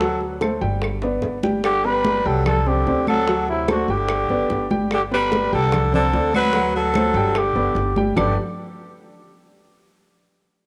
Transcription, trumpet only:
Already playing: A4
1.65 G4
1.85 B4
2.26 A4
2.46 A4
2.68 G4
3.08 A4
3.49 E4
3.70 F#4
3.91 G4
4.93 G4
5.13 B4
5.54 A4
5.95 A4
6.36 B4
6.76 A4
7.38 G4
8.18 G4

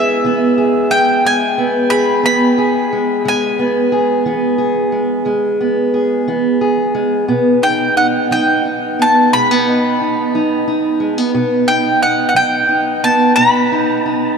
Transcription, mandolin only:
Already playing: E5
0.91 G5
1.26 G#5
1.90 B5
2.26 B5
3.28 G#5
7.63 G5
7.97 F#5
8.32 G5
9.02 A5
9.33 B5
11.68 G5
12.03 F#5
12.29 F#5
12.36 G5
13.04 A5
13.36 B5

